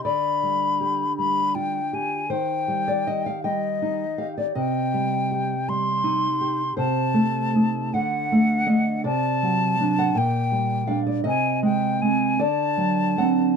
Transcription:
<<
  \new Staff \with { instrumentName = "Flute" } { \time 6/8 \key c \minor \tempo 4. = 53 b''4. b''8 g''8 aes''8 | g''4. ees''4 r8 | g''4. c'''4. | \key d \phrygian a''4. fis''4. |
a''4. g''4 r8 | aes''8 g''8 aes''8 a''4. | }
  \new Staff \with { instrumentName = "Nylon-string guitar" } { \time 6/8 \key c \minor << { d''2~ d''8 r8 | c''8. d''16 ees''16 f''16 g''4 f''16 d''16 | ees''2~ ees''8 r8 | \key d \phrygian c''4. fis''4 ees''8 |
d''4~ d''16 fis''16 g''4 f''16 d''16 | ees''4. d''4 fis''8 | } \\ { d8 g8 g'8 g8 f'8 g'8 | ees8 g8 g'8 g8 ees'8 g'8 | c8 g8 g'8 g8 ees'8 g'8 | c8 a8 <a ees'>8 d8 a8 <a d'>8 |
c8 fis8 <fis d'>8 bes,8 g8 <g d'>8 | c8 aes8 <aes c'>8 d8 fis8 <fis c'>8 | } >> }
>>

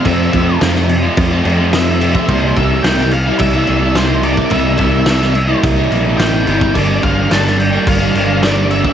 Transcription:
<<
  \new Staff \with { instrumentName = "Lead electric guitar" } { \time 4/4 \key c \mixolydian \tempo 4 = 108 e''4 r2 e''4 | c''8 e''8 g''8 f''8 e''4 c''8 d''8 | e''2 r4 g''4 | d''8 f''8 a''8 g''8 f''4 d''8 e''8 | }
  \new Staff \with { instrumentName = "Overdriven electric guitar" } { \time 4/4 \key c \mixolydian <f, c f a c' f'>8 <f a c' f'>8 <f, c f a c' f'>16 <f a c' f'>8 <f a c' f'>8 <f a c' f'>16 <f a c' f'>16 <f a c' f'>16 <f, c f a c' f'>8 <f a c' f'>16 <f a c' f'>16 | <c g bes e'>8 <c g bes e'>8 <c g bes e'>16 <g bes e'>8 <g bes e'>8 <g bes e'>16 <c g bes e'>16 <g bes e'>16 <c g bes e'>8 <c g bes e'>16 <g bes e'>16 | <c g bes e'>8 <c g bes e'>8 <c g bes e'>16 <g bes e'>8 <g bes e'>8 <g bes e'>16 <c g bes e'>16 <g bes e'>16 <c g bes e'>8 <c g bes e'>16 <g bes e'>16 | <g, d g bes d'>8 <d g bes d'>8 <g, d g bes d'>16 <g bes d'>8 <g bes d'>8 <g bes d'>16 <d g bes d'>16 <g bes d'>16 <g, d g bes d'>8 <d g bes d'>16 <g bes d'>16 | }
  \new Staff \with { instrumentName = "Picked electric bass" } { \clef bass \time 4/4 \key c \mixolydian f,8 f,8 f,4 f,8 f,4. | c,8 c,8 c,4 c,8 c,4. | c,8 c,8 c,4 c,8 bes,,8 a,,8 g,,8 | g,,8 g,,8 g,,4 g,,8 g,,4. | }
  \new DrumStaff \with { instrumentName = "Drums" } \drummode { \time 4/4 <cymc bd>8 <cymc bd>8 <cymc sn>16 sn16 cymc8 <cymc bd>8 cymc8 <cymc sn>8 cymc16 bd16 | <cymc bd>8 <cymc bd>8 <cymc sn>16 sn16 cymc8 <cymc bd>8 cymc8 <cymc sn>8 cymc16 bd16 | <cymc bd>8 <cymc bd>8 <cymc sn>16 sn16 cymc8 <cymc bd>8 cymc8 <cymc sn>8 cymc16 bd16 | <cymc bd>8 <cymc bd>8 <cymc sn>16 sn16 cymc8 <cymc bd>8 cymc8 <cymc sn>8 cymc16 bd16 | }
>>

